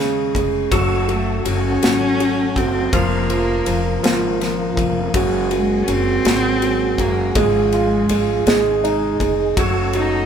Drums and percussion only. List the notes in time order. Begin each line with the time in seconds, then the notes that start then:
0.35 kick, ride
0.72 kick, ride
1.09 ride
1.46 ride
1.83 snare, ride
2.20 ride
2.56 kick, ride
2.93 kick, ride
3.30 ride
3.66 ride
4.04 snare, ride
4.41 snare, ride
4.77 kick, ride
5.14 kick, ride
5.51 ride
5.88 ride
6.25 snare, ride
6.62 ride
6.98 kick, ride
7.35 kick, ride
7.72 ride
8.09 ride
8.47 snare, ride
8.85 ride
9.20 kick, ride
9.57 kick, ride
9.93 ride